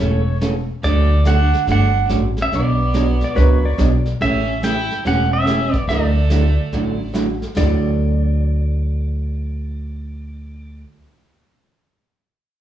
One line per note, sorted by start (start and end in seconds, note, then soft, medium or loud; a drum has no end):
0.00 0.67 E1 medium
0.00 0.22 C#3 medium
0.00 0.22 E3 medium
0.00 0.37 A3 medium
0.00 0.22 A3 medium
0.00 0.22 C#4 medium
0.00 0.23 A4 medium
0.00 0.37 C#5 medium
0.41 0.53 C#3 medium
0.41 0.53 E3 medium
0.41 0.53 A3 medium
0.41 0.53 C#4 medium
0.41 0.54 A4 medium
0.41 snare medium
0.41 hi-hat pedal medium
0.83 1.51 D2 medium
0.83 1.06 D3 medium
0.83 1.06 F#3 medium
0.83 1.22 A3 medium
0.83 1.06 A3 medium
0.83 1.07 D4 medium
0.83 1.07 F#4 medium
0.83 1.27 D5 loud
0.83 brush sweep medium
0.83 snare soft
1.25 1.37 D3 medium
1.25 1.37 F#3 medium
1.25 1.38 A3 medium
1.25 1.64 D4 medium
1.25 1.38 D4 medium
1.25 1.38 F#4 medium
1.25 1.66 F#5 loud
1.25 snare medium
1.25 hi-hat pedal medium
1.53 snare soft
1.67 2.03 G1 medium
1.67 1.90 D3 medium
1.67 1.90 F#3 medium
1.67 1.90 A3 medium
1.67 2.07 D4 medium
1.67 1.91 D4 medium
1.67 1.91 F#4 medium
1.67 brush sweep medium
1.67 snare soft
1.72 2.09 F#5 loud
2.09 2.46 A1 medium
2.09 2.22 D3 medium
2.09 2.22 F#3 medium
2.09 2.22 A3 medium
2.09 2.22 D4 medium
2.09 2.22 F#4 medium
2.09 snare medium
2.09 hi-hat pedal medium
2.37 2.52 C#4 medium
2.37 snare soft
2.42 2.54 E5 medium
2.52 3.20 B1 medium
2.52 2.75 B2 medium
2.52 2.75 F#3 medium
2.52 2.75 B3 medium
2.52 3.34 B3 medium
2.52 2.75 D4 medium
2.52 2.75 F#4 medium
2.52 2.75 C#5 medium
2.52 3.35 D5 medium
2.52 brush sweep soft
2.52 snare soft
2.94 3.06 B2 medium
2.94 3.06 F#3 medium
2.94 3.06 B3 medium
2.94 3.06 D4 medium
2.94 3.06 F#4 medium
2.94 3.06 C#5 medium
2.94 snare medium
2.94 hi-hat pedal medium
3.21 3.37 D5 medium
3.21 snare soft
3.34 3.72 C#2 medium
3.34 3.58 B2 medium
3.34 3.58 F#3 medium
3.34 3.76 A#3 medium
3.34 3.58 B3 medium
3.34 3.58 D4 medium
3.34 3.58 F#4 medium
3.34 3.63 B4 medium
3.34 3.76 C#5 medium
3.34 3.59 C#5 medium
3.34 brush sweep medium
3.34 snare soft
3.65 4.12 D5 medium
3.78 4.14 B1 medium
3.78 3.90 B2 medium
3.78 3.90 F#3 medium
3.78 3.90 B3 medium
3.78 3.90 D4 medium
3.78 3.90 F#4 medium
3.78 3.91 C#5 medium
3.78 snare medium
3.78 hi-hat pedal medium
4.06 snare soft
4.21 4.88 A1 medium
4.21 4.43 C#3 medium
4.21 4.43 E3 medium
4.21 4.43 A3 medium
4.21 4.43 C#4 medium
4.21 4.61 C#4 loud
4.21 4.43 G4 medium
4.21 4.65 E5 loud
4.21 brush sweep medium
4.21 snare soft
4.63 4.75 C#3 medium
4.63 4.75 E3 medium
4.63 4.75 A3 medium
4.63 4.75 C#4 medium
4.63 5.02 E4 medium
4.63 4.75 G4 medium
4.63 5.07 G5 loud
4.63 snare medium
4.63 hi-hat pedal medium
4.90 snare soft
5.05 5.72 E1 medium
5.05 5.27 C#3 medium
5.05 5.27 E3 medium
5.05 5.27 A3 medium
5.05 5.30 C#4 medium
5.05 5.28 C#4 medium
5.05 5.28 G4 medium
5.05 5.32 F#5 loud
5.05 brush sweep medium
5.05 snare soft
5.33 5.74 C#4 medium
5.33 5.73 E5 medium
5.46 5.58 C#3 medium
5.46 5.58 E3 medium
5.46 5.58 A3 medium
5.46 5.59 C#4 medium
5.46 5.59 G4 medium
5.46 snare medium
5.46 hi-hat pedal medium
5.73 5.86 B3 medium
5.73 5.86 D5 medium
5.73 kick medium
5.73 snare soft
5.88 6.55 D2 medium
5.88 6.11 D3 medium
5.88 6.11 F#3 medium
5.88 7.11 A3 medium
5.88 6.12 A3 medium
5.88 6.11 E4 medium
5.88 6.12 F#4 medium
5.88 7.11 D5 medium
5.88 brush sweep soft
5.88 snare soft
6.30 6.42 D3 medium
6.30 6.43 F#3 medium
6.30 6.43 A3 medium
6.30 6.43 E4 medium
6.30 6.43 F#4 medium
6.30 snare medium
6.30 hi-hat pedal medium
6.72 7.40 A1 medium
6.72 6.95 D3 medium
6.72 6.95 F#3 medium
6.72 6.96 A3 medium
6.72 6.96 E4 medium
6.72 6.96 F#4 medium
6.72 brush sweep medium
6.72 snare soft
7.14 7.26 D3 medium
7.14 7.26 F#3 medium
7.14 7.26 A3 medium
7.14 7.26 E4 medium
7.14 7.27 F#4 medium
7.14 snare medium
7.14 hi-hat pedal medium
7.42 snare soft
7.57 10.82 D2 medium
7.57 11.07 D3 medium
7.57 11.07 F#3 medium
7.57 11.07 A3 medium
7.57 11.08 E4 medium
7.57 11.08 F#4 medium
7.57 10.82 D5 loud
7.57 snare loud
7.57 floor tom loud
7.57 splash medium